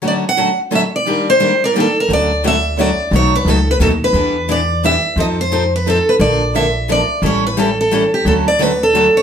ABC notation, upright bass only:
X:1
M:3/4
L:1/8
Q:"Swing" 1/4=175
K:D
V:1 name="Upright bass" clef=bass
z6 | z6 | D,,6 | B,,,2 C,,2 ^D,,2 |
E,,6 | =F,,6 | _B,,,6 | A,,,6 |
D,,6 |]